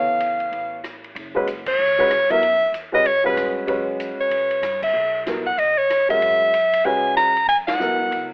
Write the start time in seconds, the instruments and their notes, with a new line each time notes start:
Already playing: upright bass C#2, upright piano E3 B3 A4 C#5, soprano saxophone F5
0.20 hi-hat pedal, ride
0.40 ride
0.52 upright bass A1, ride
0.84 cross-stick, hi-hat pedal, ride
1.04 ride
1.15 upright bass F#1, ride
1.35 upright piano G#3 C#4 F#4 B4
1.47 hi-hat pedal, ride
1.66 upright bass C#2, soprano saxophone C#5, kick, crash
1.79 upright bass C#2
1.99 upright piano G#3 C#4 F#4 B4
2.10 cross-stick, hi-hat pedal, ride
2.30 upright piano F#3 B3 E4 A#4, soprano saxophone E5, ride
2.41 upright bass F#2, ride
2.72 upright bass E2, hi-hat pedal, ride
2.92 upright piano G#3 C#4 F#4 B4, soprano saxophone D#5
3.04 upright bass C#2, soprano saxophone C#5, ride
3.24 upright piano G#3 C#4 F#4 B4, soprano saxophone B4
3.35 upright bass G2, cross-stick, hi-hat pedal, ride
3.67 upright bass F#2, upright piano G#3 C#4 F#4 B4, ride
4.00 hi-hat pedal, ride
4.18 soprano saxophone C#5, muted upright bass stroke
4.30 upright bass C#2, ride
4.51 ride
4.62 upright bass G2, cross-stick, hi-hat pedal, ride
4.82 soprano saxophone E5, kick, crash
4.94 upright bass B1
5.26 upright piano F#3 B3 E4 A#4, snare, hi-hat pedal, ride
5.46 soprano saxophone F#5, kick
5.58 upright bass C#2, soprano saxophone D#5, ride
5.78 soprano saxophone C#5
5.90 cross-stick, hi-hat pedal, ride
6.09 upright piano G#3 C#4 F#4 A#4, soprano saxophone E5, ride
6.20 upright bass F#2, ride
6.54 hi-hat pedal, ride
6.73 ride
6.85 upright bass C#2, upright piano G#3 C#4 F#4 B4, soprano saxophone G#5
7.17 soprano saxophone A#5, cross-stick, hi-hat pedal, ride
7.37 ride
7.48 upright bass F#2, soprano saxophone G#5, ride
7.67 soprano saxophone F#5, snare, ride
7.80 upright piano F#3 B3 E4 A#4, hi-hat pedal
7.99 upright bass G2
8.11 upright bass C#2, ride